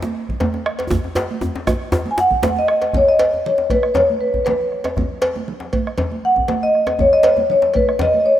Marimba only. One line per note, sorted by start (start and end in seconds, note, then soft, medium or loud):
2.11 2.18 G#5 medium
2.20 2.49 F#5 loud
2.50 2.57 F#5 medium
2.59 2.93 D#5 medium
2.97 3.09 C#5 medium
3.08 3.43 D#5 medium
3.47 3.63 C#5 medium
3.64 3.70 C#5 soft
3.71 3.96 B4 medium
3.94 4.21 C#5 medium
4.21 4.32 B4 medium
4.45 4.81 B4 medium
6.25 6.64 F#5 medium
6.63 6.97 D#5 medium
7.01 7.13 C#5 medium
7.13 7.47 D#5 medium
7.51 7.74 C#5 medium
7.76 7.87 B4 medium
8.02 8.19 D#5 medium
8.20 8.26 D#5 medium
8.26 8.34 C#5 medium